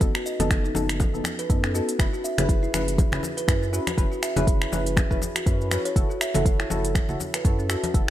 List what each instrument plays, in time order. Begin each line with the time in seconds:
0.01 analog synth bass F#1, synth stab B3 D#4 A4, kick, closed hi-hat, shaker
0.15 kalimba F#4, finger snap, shaker
0.26 kalimba D#5, shaker
0.40 analog synth bass F#1, synth stab B3 D#4 A4, kalimba A4, closed hi-hat, high conga, low conga, shaker
0.51 kalimba D#4, finger snap, kick, closed hi-hat, shaker
0.64 kalimba D#4, shaker
0.75 analog synth bass F#1, synth stab B3 D#4 A4, high conga, shaker
0.89 finger snap, closed hi-hat, shaker
1.00 kick, closed hi-hat, high conga, shaker
1.14 analog synth bass F#1, synth stab B3 D#4 A4, shaker
1.24 finger snap, high conga, shaker
1.39 kalimba B4, closed hi-hat, shaker
1.50 analog synth bass F#2, synth stab B3 D#4 A4, kalimba D#4, kick, closed hi-hat, shaker
1.64 kalimba C#4, finger snap, shaker
1.75 synth stab B3 D#4 A4, kalimba F#4, shaker
1.89 closed hi-hat, shaker
1.99 analog synth bass F#1, synth stab C#4 E4 B4, finger snap, kick, closed hi-hat, shaker
2.13 kalimba F#4, shaker
2.24 kalimba E5, shaker
2.38 analog synth bass F#1, synth stab C#4 E4 B4, kalimba G#4, finger snap, closed hi-hat, high conga, low conga, shaker
2.49 kalimba E4, kick, closed hi-hat, shaker
2.63 kalimba E4, shaker
2.74 analog synth bass F#1, synth stab C#4 E4 B4, finger snap, high conga, shaker
2.88 closed hi-hat, shaker
2.98 kick, closed hi-hat, high conga, shaker
3.12 analog synth bass F#1, synth stab C#4 E4 B4, finger snap, low conga, shaker
3.23 high conga, shaker
3.37 kalimba B4, closed hi-hat, shaker
3.48 analog synth bass F#2, synth stab C#4 E4 B4, kalimba E4, finger snap, kick, closed hi-hat, shaker
3.62 kalimba C#4, shaker
3.73 synth stab C#4 E4 B4, kalimba F#4, shaker
3.87 finger snap, closed hi-hat, high conga, shaker
3.98 analog synth bass F#1, synth stab C#4 E4 B4, kick, closed hi-hat, shaker
4.12 kalimba F#4, shaker
4.23 kalimba E5, finger snap, shaker
4.36 analog synth bass F#1, synth stab C#4 E4 B4, kalimba G#4, closed hi-hat, high conga, low conga, shaker
4.47 kalimba E4, kick, closed hi-hat, shaker
4.61 kalimba E4, finger snap, shaker
4.72 analog synth bass F#1, synth stab C#4 E4 B4, high conga, shaker
4.86 closed hi-hat, shaker
4.97 finger snap, kick, closed hi-hat, high conga, shaker
5.11 analog synth bass F#1, synth stab C#4 E4 B4, kick, shaker
5.22 high conga, shaker
5.36 kalimba F#4, finger snap, closed hi-hat, shaker
5.46 analog synth bass F#2, synth stab C#4 E4 B4, kalimba E4, kick, closed hi-hat, shaker
5.61 shaker
5.71 synth stab C#4 E4 B4, kalimba F#4, finger snap, high conga, shaker
5.85 kalimba C#5, closed hi-hat, shaker
5.96 analog synth bass F#1, synth stab E4 F#4 A4, kick, closed hi-hat, shaker
6.10 kalimba F#4, shaker
6.21 kalimba E5, finger snap, shaker
6.34 analog synth bass F#1, synth stab E4 F#4 A4, kalimba A4, closed hi-hat, high conga, low conga, shaker
6.46 kalimba E4, kick, closed hi-hat, shaker
6.60 kalimba E4, finger snap, shaker
6.70 analog synth bass F#1, synth stab E4 F#4 A4, high conga, shaker
6.85 closed hi-hat, shaker
6.95 finger snap, kick, closed hi-hat, high conga, shaker
7.09 analog synth bass F#1, synth stab E4 F#4 A4, low conga, shaker
7.20 high conga, shaker
7.34 kalimba B4, finger snap, closed hi-hat, shaker
7.45 analog synth bass F#2, synth stab E4 F#4 A4, kalimba E4, kick, closed hi-hat, shaker
7.59 kalimba C#4, shaker
7.70 synth stab E4 F#4 A4, kalimba F#4, finger snap, shaker
7.84 closed hi-hat, high conga, shaker
7.94 analog synth bass F#1, synth stab E4 F#4 A4, kick, closed hi-hat, shaker